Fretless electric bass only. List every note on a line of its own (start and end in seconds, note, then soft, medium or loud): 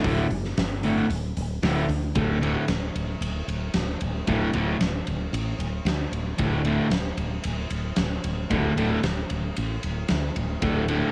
0.04 0.27 D1 medium
0.30 0.53 F#1 medium
0.57 1.02 G1 medium
1.09 1.32 D1 medium
1.37 1.59 D1 medium
1.62 1.85 D1 medium
1.88 2.11 D2 medium
2.16 2.55 D1 medium
2.68 2.88 D1 medium
2.95 3.15 D1 medium
3.21 3.41 D1 medium
3.48 3.68 D1 medium
3.75 3.94 D1 medium
4.01 4.21 D1 medium
4.28 4.47 D1 medium
4.54 4.74 D1 medium
4.81 5.00 D1 medium
5.08 5.27 D1 medium
5.33 5.53 A1 medium
5.59 5.79 D1 medium
5.85 6.05 D2 medium
6.12 6.32 D1 medium
6.39 6.78 D1 medium
6.90 7.11 D1 medium
7.17 7.37 D1 medium
7.45 7.65 D1 medium
7.70 7.90 D1 medium
7.97 8.17 D1 medium
8.24 8.44 D1 medium
8.51 8.70 D1 loud
8.77 8.97 D1 medium
9.03 9.23 D1 medium
9.30 9.50 D1 medium
9.58 9.77 A1 medium
9.84 10.03 D1 medium
10.10 10.30 D2 medium
10.36 10.55 D1 medium
10.62 11.01 D1 medium